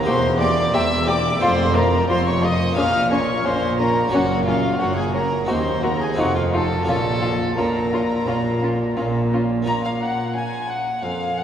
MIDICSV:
0, 0, Header, 1, 8, 480
1, 0, Start_track
1, 0, Key_signature, -5, "minor"
1, 0, Tempo, 677966
1, 1000, Time_signature, 4, 2, 24, 8
1, 3883, Tempo, 698487
1, 6763, Tempo, 680272
1, 8005, End_track
2, 0, Start_track
2, 0, Title_t, "Violin section"
2, 0, Program_c, 0, 48
2, 32, Note_on_c, 0, 84, 99
2, 271, Note_off_c, 0, 84, 0
2, 276, Note_on_c, 0, 86, 93
2, 513, Note_off_c, 0, 86, 0
2, 525, Note_on_c, 0, 88, 115
2, 758, Note_off_c, 0, 88, 0
2, 765, Note_on_c, 0, 86, 108
2, 998, Note_off_c, 0, 86, 0
2, 1004, Note_on_c, 0, 84, 108
2, 1231, Note_on_c, 0, 82, 98
2, 1242, Note_off_c, 0, 84, 0
2, 1476, Note_off_c, 0, 82, 0
2, 1484, Note_on_c, 0, 84, 113
2, 1600, Note_off_c, 0, 84, 0
2, 1612, Note_on_c, 0, 85, 100
2, 1718, Note_on_c, 0, 87, 108
2, 1726, Note_off_c, 0, 85, 0
2, 1958, Note_on_c, 0, 89, 100
2, 1959, Note_off_c, 0, 87, 0
2, 2200, Note_off_c, 0, 89, 0
2, 2203, Note_on_c, 0, 85, 88
2, 2438, Note_off_c, 0, 85, 0
2, 2445, Note_on_c, 0, 84, 93
2, 2679, Note_on_c, 0, 82, 91
2, 2683, Note_off_c, 0, 84, 0
2, 2911, Note_on_c, 0, 78, 101
2, 2915, Note_off_c, 0, 82, 0
2, 3150, Note_off_c, 0, 78, 0
2, 3156, Note_on_c, 0, 77, 90
2, 3392, Note_off_c, 0, 77, 0
2, 3397, Note_on_c, 0, 78, 99
2, 3518, Note_off_c, 0, 78, 0
2, 3526, Note_on_c, 0, 80, 88
2, 3638, Note_on_c, 0, 82, 89
2, 3643, Note_off_c, 0, 80, 0
2, 3876, Note_off_c, 0, 82, 0
2, 3887, Note_on_c, 0, 84, 86
2, 4115, Note_on_c, 0, 82, 94
2, 4116, Note_off_c, 0, 84, 0
2, 4236, Note_off_c, 0, 82, 0
2, 4242, Note_on_c, 0, 80, 87
2, 4355, Note_on_c, 0, 78, 93
2, 4359, Note_off_c, 0, 80, 0
2, 4476, Note_off_c, 0, 78, 0
2, 4484, Note_on_c, 0, 77, 82
2, 4601, Note_off_c, 0, 77, 0
2, 4602, Note_on_c, 0, 81, 80
2, 4831, Note_off_c, 0, 81, 0
2, 4839, Note_on_c, 0, 81, 95
2, 5313, Note_off_c, 0, 81, 0
2, 5321, Note_on_c, 0, 82, 84
2, 6283, Note_off_c, 0, 82, 0
2, 7249, Note_on_c, 0, 65, 40
2, 7603, Note_off_c, 0, 65, 0
2, 8005, End_track
3, 0, Start_track
3, 0, Title_t, "Violin"
3, 0, Program_c, 1, 40
3, 40, Note_on_c, 1, 72, 92
3, 275, Note_off_c, 1, 72, 0
3, 282, Note_on_c, 1, 74, 95
3, 522, Note_on_c, 1, 76, 91
3, 532, Note_off_c, 1, 74, 0
3, 765, Note_on_c, 1, 74, 89
3, 776, Note_off_c, 1, 76, 0
3, 999, Note_off_c, 1, 74, 0
3, 1004, Note_on_c, 1, 72, 100
3, 1239, Note_on_c, 1, 70, 91
3, 1249, Note_off_c, 1, 72, 0
3, 1480, Note_off_c, 1, 70, 0
3, 1485, Note_on_c, 1, 72, 90
3, 1600, Note_off_c, 1, 72, 0
3, 1608, Note_on_c, 1, 73, 81
3, 1722, Note_on_c, 1, 75, 91
3, 1732, Note_off_c, 1, 73, 0
3, 1956, Note_off_c, 1, 75, 0
3, 1960, Note_on_c, 1, 77, 95
3, 2196, Note_off_c, 1, 77, 0
3, 2200, Note_on_c, 1, 73, 79
3, 2443, Note_on_c, 1, 72, 88
3, 2454, Note_off_c, 1, 73, 0
3, 2675, Note_off_c, 1, 72, 0
3, 2679, Note_on_c, 1, 70, 80
3, 2917, Note_on_c, 1, 66, 88
3, 2928, Note_off_c, 1, 70, 0
3, 3147, Note_off_c, 1, 66, 0
3, 3151, Note_on_c, 1, 65, 80
3, 3390, Note_off_c, 1, 65, 0
3, 3397, Note_on_c, 1, 66, 78
3, 3513, Note_off_c, 1, 66, 0
3, 3517, Note_on_c, 1, 68, 76
3, 3636, Note_off_c, 1, 68, 0
3, 3642, Note_on_c, 1, 70, 84
3, 3878, Note_off_c, 1, 70, 0
3, 3891, Note_on_c, 1, 72, 75
3, 4121, Note_on_c, 1, 70, 76
3, 4131, Note_off_c, 1, 72, 0
3, 4241, Note_on_c, 1, 68, 74
3, 4251, Note_off_c, 1, 70, 0
3, 4367, Note_on_c, 1, 66, 82
3, 4378, Note_off_c, 1, 68, 0
3, 4473, Note_off_c, 1, 66, 0
3, 4478, Note_on_c, 1, 65, 67
3, 4526, Note_off_c, 1, 65, 0
3, 4604, Note_on_c, 1, 69, 79
3, 4834, Note_off_c, 1, 69, 0
3, 4838, Note_on_c, 1, 69, 96
3, 5313, Note_off_c, 1, 69, 0
3, 5324, Note_on_c, 1, 70, 72
3, 6265, Note_off_c, 1, 70, 0
3, 6759, Note_on_c, 1, 82, 72
3, 6808, Note_off_c, 1, 82, 0
3, 6887, Note_on_c, 1, 77, 56
3, 6935, Note_off_c, 1, 77, 0
3, 7010, Note_on_c, 1, 78, 60
3, 7237, Note_off_c, 1, 78, 0
3, 7241, Note_on_c, 1, 80, 67
3, 7483, Note_on_c, 1, 78, 59
3, 7493, Note_off_c, 1, 80, 0
3, 7716, Note_on_c, 1, 77, 62
3, 7727, Note_off_c, 1, 78, 0
3, 7964, Note_on_c, 1, 78, 55
3, 7974, Note_off_c, 1, 77, 0
3, 8005, Note_off_c, 1, 78, 0
3, 8005, End_track
4, 0, Start_track
4, 0, Title_t, "Violin section"
4, 0, Program_c, 2, 48
4, 39, Note_on_c, 2, 67, 73
4, 95, Note_off_c, 2, 67, 0
4, 285, Note_on_c, 2, 67, 62
4, 341, Note_off_c, 2, 67, 0
4, 522, Note_on_c, 2, 67, 65
4, 579, Note_off_c, 2, 67, 0
4, 755, Note_on_c, 2, 67, 65
4, 812, Note_off_c, 2, 67, 0
4, 1002, Note_on_c, 2, 65, 83
4, 1059, Note_off_c, 2, 65, 0
4, 1240, Note_on_c, 2, 65, 66
4, 1297, Note_off_c, 2, 65, 0
4, 1475, Note_on_c, 2, 65, 65
4, 1532, Note_off_c, 2, 65, 0
4, 1711, Note_on_c, 2, 65, 67
4, 1768, Note_off_c, 2, 65, 0
4, 1954, Note_on_c, 2, 61, 70
4, 2010, Note_off_c, 2, 61, 0
4, 2201, Note_on_c, 2, 61, 67
4, 2257, Note_off_c, 2, 61, 0
4, 2445, Note_on_c, 2, 61, 62
4, 2501, Note_off_c, 2, 61, 0
4, 2689, Note_on_c, 2, 61, 64
4, 2745, Note_off_c, 2, 61, 0
4, 2926, Note_on_c, 2, 61, 85
4, 2983, Note_off_c, 2, 61, 0
4, 3163, Note_on_c, 2, 61, 61
4, 3220, Note_off_c, 2, 61, 0
4, 3396, Note_on_c, 2, 61, 61
4, 3452, Note_off_c, 2, 61, 0
4, 3639, Note_on_c, 2, 61, 64
4, 3696, Note_off_c, 2, 61, 0
4, 3876, Note_on_c, 2, 66, 61
4, 3931, Note_off_c, 2, 66, 0
4, 4115, Note_on_c, 2, 66, 60
4, 4170, Note_off_c, 2, 66, 0
4, 4353, Note_on_c, 2, 65, 59
4, 4408, Note_off_c, 2, 65, 0
4, 4599, Note_on_c, 2, 65, 61
4, 4654, Note_off_c, 2, 65, 0
4, 4839, Note_on_c, 2, 65, 70
4, 4894, Note_off_c, 2, 65, 0
4, 5072, Note_on_c, 2, 65, 60
4, 5127, Note_off_c, 2, 65, 0
4, 5319, Note_on_c, 2, 65, 54
4, 5374, Note_off_c, 2, 65, 0
4, 5557, Note_on_c, 2, 65, 60
4, 5612, Note_off_c, 2, 65, 0
4, 5798, Note_on_c, 2, 65, 59
4, 5853, Note_off_c, 2, 65, 0
4, 6041, Note_on_c, 2, 65, 55
4, 6096, Note_off_c, 2, 65, 0
4, 6279, Note_on_c, 2, 65, 61
4, 6334, Note_off_c, 2, 65, 0
4, 6526, Note_on_c, 2, 65, 58
4, 6581, Note_off_c, 2, 65, 0
4, 6756, Note_on_c, 2, 82, 68
4, 6871, Note_off_c, 2, 82, 0
4, 6877, Note_on_c, 2, 77, 47
4, 6995, Note_on_c, 2, 78, 46
4, 6998, Note_off_c, 2, 77, 0
4, 7240, Note_off_c, 2, 78, 0
4, 7242, Note_on_c, 2, 80, 47
4, 7471, Note_on_c, 2, 78, 51
4, 7483, Note_off_c, 2, 80, 0
4, 7714, Note_on_c, 2, 77, 51
4, 7717, Note_off_c, 2, 78, 0
4, 7953, Note_off_c, 2, 77, 0
4, 7962, Note_on_c, 2, 78, 52
4, 8005, Note_off_c, 2, 78, 0
4, 8005, End_track
5, 0, Start_track
5, 0, Title_t, "Harpsichord"
5, 0, Program_c, 3, 6
5, 11, Note_on_c, 3, 58, 57
5, 24, Note_on_c, 3, 60, 59
5, 35, Note_on_c, 3, 67, 57
5, 45, Note_on_c, 3, 40, 66
5, 446, Note_off_c, 3, 40, 0
5, 522, Note_on_c, 3, 40, 64
5, 925, Note_off_c, 3, 40, 0
5, 956, Note_off_c, 3, 58, 0
5, 963, Note_off_c, 3, 60, 0
5, 969, Note_off_c, 3, 67, 0
5, 972, Note_on_c, 3, 57, 61
5, 986, Note_on_c, 3, 60, 63
5, 995, Note_on_c, 3, 65, 72
5, 1008, Note_on_c, 3, 41, 80
5, 1408, Note_off_c, 3, 41, 0
5, 1486, Note_on_c, 3, 41, 65
5, 1886, Note_off_c, 3, 41, 0
5, 1918, Note_off_c, 3, 57, 0
5, 1924, Note_off_c, 3, 60, 0
5, 1926, Note_on_c, 3, 58, 51
5, 1929, Note_off_c, 3, 65, 0
5, 1941, Note_on_c, 3, 61, 56
5, 1947, Note_on_c, 3, 65, 53
5, 1957, Note_on_c, 3, 46, 59
5, 2364, Note_off_c, 3, 46, 0
5, 2448, Note_on_c, 3, 46, 66
5, 2848, Note_off_c, 3, 46, 0
5, 2876, Note_off_c, 3, 58, 0
5, 2883, Note_off_c, 3, 61, 0
5, 2886, Note_off_c, 3, 65, 0
5, 2886, Note_on_c, 3, 58, 59
5, 2898, Note_on_c, 3, 61, 66
5, 2907, Note_on_c, 3, 66, 62
5, 2921, Note_on_c, 3, 42, 69
5, 3324, Note_off_c, 3, 42, 0
5, 3408, Note_on_c, 3, 42, 61
5, 3809, Note_off_c, 3, 42, 0
5, 3836, Note_off_c, 3, 58, 0
5, 3842, Note_off_c, 3, 61, 0
5, 3846, Note_off_c, 3, 66, 0
5, 3859, Note_on_c, 3, 60, 51
5, 3870, Note_on_c, 3, 63, 48
5, 3883, Note_on_c, 3, 66, 56
5, 3893, Note_on_c, 3, 39, 60
5, 4287, Note_off_c, 3, 39, 0
5, 4324, Note_off_c, 3, 60, 0
5, 4333, Note_on_c, 3, 60, 54
5, 4334, Note_off_c, 3, 63, 0
5, 4342, Note_on_c, 3, 63, 60
5, 4344, Note_off_c, 3, 66, 0
5, 4351, Note_on_c, 3, 65, 56
5, 4363, Note_on_c, 3, 41, 60
5, 4766, Note_off_c, 3, 41, 0
5, 4808, Note_on_c, 3, 58, 59
5, 4812, Note_off_c, 3, 60, 0
5, 4817, Note_off_c, 3, 63, 0
5, 4819, Note_on_c, 3, 61, 55
5, 4820, Note_off_c, 3, 65, 0
5, 4828, Note_on_c, 3, 65, 55
5, 4838, Note_on_c, 3, 46, 64
5, 5247, Note_off_c, 3, 46, 0
5, 5324, Note_on_c, 3, 46, 50
5, 5729, Note_off_c, 3, 46, 0
5, 5799, Note_on_c, 3, 46, 57
5, 6206, Note_off_c, 3, 46, 0
5, 6278, Note_on_c, 3, 46, 60
5, 6684, Note_off_c, 3, 46, 0
5, 6718, Note_off_c, 3, 58, 0
5, 6724, Note_off_c, 3, 61, 0
5, 6727, Note_on_c, 3, 58, 35
5, 6728, Note_off_c, 3, 65, 0
5, 6741, Note_on_c, 3, 61, 40
5, 6752, Note_on_c, 3, 65, 35
5, 6762, Note_on_c, 3, 46, 41
5, 7144, Note_off_c, 3, 46, 0
5, 7715, Note_on_c, 3, 41, 35
5, 8005, Note_off_c, 3, 41, 0
5, 8005, Note_off_c, 3, 58, 0
5, 8005, Note_off_c, 3, 61, 0
5, 8005, Note_off_c, 3, 65, 0
5, 8005, End_track
6, 0, Start_track
6, 0, Title_t, "Viola section"
6, 0, Program_c, 4, 48
6, 45, Note_on_c, 4, 58, 76
6, 102, Note_off_c, 4, 58, 0
6, 277, Note_on_c, 4, 58, 63
6, 333, Note_off_c, 4, 58, 0
6, 519, Note_on_c, 4, 58, 69
6, 576, Note_off_c, 4, 58, 0
6, 756, Note_on_c, 4, 58, 77
6, 813, Note_off_c, 4, 58, 0
6, 1001, Note_on_c, 4, 57, 65
6, 1058, Note_off_c, 4, 57, 0
6, 1245, Note_on_c, 4, 57, 63
6, 1302, Note_off_c, 4, 57, 0
6, 1485, Note_on_c, 4, 57, 69
6, 1541, Note_off_c, 4, 57, 0
6, 1721, Note_on_c, 4, 57, 62
6, 1777, Note_off_c, 4, 57, 0
6, 1960, Note_on_c, 4, 58, 82
6, 2017, Note_off_c, 4, 58, 0
6, 2204, Note_on_c, 4, 58, 64
6, 2260, Note_off_c, 4, 58, 0
6, 2449, Note_on_c, 4, 58, 71
6, 2505, Note_off_c, 4, 58, 0
6, 2689, Note_on_c, 4, 58, 70
6, 2745, Note_off_c, 4, 58, 0
6, 2926, Note_on_c, 4, 58, 65
6, 2982, Note_off_c, 4, 58, 0
6, 3168, Note_on_c, 4, 58, 68
6, 3225, Note_off_c, 4, 58, 0
6, 3409, Note_on_c, 4, 58, 58
6, 3466, Note_off_c, 4, 58, 0
6, 3648, Note_on_c, 4, 58, 64
6, 3705, Note_off_c, 4, 58, 0
6, 3891, Note_on_c, 4, 58, 69
6, 3946, Note_off_c, 4, 58, 0
6, 4128, Note_on_c, 4, 58, 56
6, 4183, Note_off_c, 4, 58, 0
6, 4357, Note_on_c, 4, 63, 65
6, 4412, Note_off_c, 4, 63, 0
6, 4606, Note_on_c, 4, 63, 65
6, 4661, Note_off_c, 4, 63, 0
6, 4843, Note_on_c, 4, 61, 57
6, 4898, Note_off_c, 4, 61, 0
6, 5082, Note_on_c, 4, 61, 61
6, 5137, Note_off_c, 4, 61, 0
6, 5323, Note_on_c, 4, 61, 58
6, 5377, Note_off_c, 4, 61, 0
6, 5560, Note_on_c, 4, 61, 55
6, 5615, Note_off_c, 4, 61, 0
6, 5796, Note_on_c, 4, 61, 69
6, 5851, Note_off_c, 4, 61, 0
6, 6041, Note_on_c, 4, 61, 54
6, 6096, Note_off_c, 4, 61, 0
6, 6283, Note_on_c, 4, 61, 54
6, 6338, Note_off_c, 4, 61, 0
6, 6522, Note_on_c, 4, 61, 60
6, 6577, Note_off_c, 4, 61, 0
6, 7243, Note_on_c, 4, 61, 43
6, 7600, Note_off_c, 4, 61, 0
6, 8005, End_track
7, 0, Start_track
7, 0, Title_t, "Cello section"
7, 0, Program_c, 5, 48
7, 38, Note_on_c, 5, 40, 98
7, 462, Note_off_c, 5, 40, 0
7, 519, Note_on_c, 5, 40, 86
7, 943, Note_off_c, 5, 40, 0
7, 998, Note_on_c, 5, 41, 95
7, 1423, Note_off_c, 5, 41, 0
7, 1475, Note_on_c, 5, 41, 84
7, 1900, Note_off_c, 5, 41, 0
7, 1956, Note_on_c, 5, 46, 84
7, 2383, Note_off_c, 5, 46, 0
7, 2441, Note_on_c, 5, 46, 83
7, 2864, Note_off_c, 5, 46, 0
7, 2915, Note_on_c, 5, 42, 96
7, 3340, Note_off_c, 5, 42, 0
7, 3400, Note_on_c, 5, 42, 78
7, 3825, Note_off_c, 5, 42, 0
7, 3882, Note_on_c, 5, 39, 76
7, 4301, Note_off_c, 5, 39, 0
7, 4355, Note_on_c, 5, 41, 83
7, 4781, Note_off_c, 5, 41, 0
7, 4837, Note_on_c, 5, 46, 83
7, 5265, Note_off_c, 5, 46, 0
7, 5319, Note_on_c, 5, 46, 72
7, 5745, Note_off_c, 5, 46, 0
7, 5799, Note_on_c, 5, 46, 71
7, 6225, Note_off_c, 5, 46, 0
7, 6282, Note_on_c, 5, 46, 81
7, 6705, Note_off_c, 5, 46, 0
7, 6760, Note_on_c, 5, 46, 54
7, 7144, Note_off_c, 5, 46, 0
7, 7724, Note_on_c, 5, 41, 53
7, 8005, Note_off_c, 5, 41, 0
7, 8005, End_track
8, 0, Start_track
8, 0, Title_t, "Double bass section"
8, 0, Program_c, 6, 48
8, 41, Note_on_c, 6, 28, 84
8, 464, Note_off_c, 6, 28, 0
8, 515, Note_on_c, 6, 28, 84
8, 941, Note_off_c, 6, 28, 0
8, 999, Note_on_c, 6, 29, 90
8, 1423, Note_off_c, 6, 29, 0
8, 1477, Note_on_c, 6, 29, 76
8, 1901, Note_off_c, 6, 29, 0
8, 1956, Note_on_c, 6, 34, 77
8, 2383, Note_off_c, 6, 34, 0
8, 2440, Note_on_c, 6, 34, 76
8, 2863, Note_off_c, 6, 34, 0
8, 2918, Note_on_c, 6, 30, 84
8, 3342, Note_off_c, 6, 30, 0
8, 3399, Note_on_c, 6, 30, 68
8, 3824, Note_off_c, 6, 30, 0
8, 3882, Note_on_c, 6, 39, 76
8, 4301, Note_off_c, 6, 39, 0
8, 4353, Note_on_c, 6, 29, 80
8, 4780, Note_off_c, 6, 29, 0
8, 4842, Note_on_c, 6, 34, 84
8, 5267, Note_off_c, 6, 34, 0
8, 5324, Note_on_c, 6, 34, 71
8, 5747, Note_off_c, 6, 34, 0
8, 5803, Note_on_c, 6, 34, 72
8, 6226, Note_off_c, 6, 34, 0
8, 6288, Note_on_c, 6, 34, 80
8, 6708, Note_off_c, 6, 34, 0
8, 8005, End_track
0, 0, End_of_file